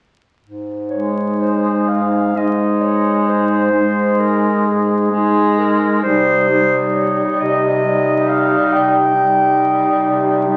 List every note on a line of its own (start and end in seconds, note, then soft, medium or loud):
0.42 1.71 G#2 soft
0.90 2.32 G#3 soft
0.90 2.32 D#4 soft
0.90 1.42 C#5 soft
1.40 1.89 C5 soft
1.88 3.10 G#2 soft
1.88 2.38 F5 medium
2.35 3.69 G#3 soft
2.35 3.69 D#4 soft
2.35 2.83 D#5 soft
2.81 3.26 C#5 soft
3.27 4.49 G#2 soft
3.27 4.21 C5 medium
3.71 5.09 G#3 soft
3.71 5.10 D#4 soft
4.19 4.68 A#4 medium
4.66 5.88 G#2 soft
4.66 5.60 G#4 medium
5.11 6.01 G#3 soft
5.11 6.03 D#4 soft
5.59 6.02 A#4 medium
6.02 7.23 C3 soft
6.02 6.48 G3 soft
6.02 6.48 D#4 soft
6.02 6.77 C5 medium
6.49 7.81 G3 soft
6.49 7.66 D#4 soft
6.94 7.42 C#5 medium
7.39 8.56 C3 medium
7.39 8.30 D#5 medium
7.83 8.99 G3 soft
7.83 9.13 D#4 soft
8.28 8.74 F5 medium
8.72 9.87 C3 soft
8.72 10.57 G5 medium
9.16 10.43 G3 soft
9.16 10.43 D#4 soft
10.03 10.57 C3 soft
10.47 10.57 G3 soft
10.47 10.57 D#4 soft